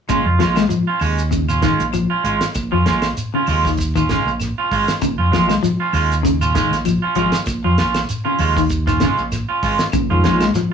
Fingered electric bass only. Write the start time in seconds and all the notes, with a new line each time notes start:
0.09 A#1
0.26 F2
0.41 A#1
1.01 D#2
1.80 A#1
2.24 G#1
2.55 A#1
2.73 F2
2.86 A#1
3.48 D#2
4.25 A#1
4.71 G#1
5.02 A#1
5.18 F2
5.31 A#1
5.93 D#2
6.71 A#1
7.16 G#1
7.47 A#1
7.65 F2
7.78 A#1
8.39 D#2
9.18 A#1
9.63 G#1
9.94 A#1
10.10 F2
10.25 A#1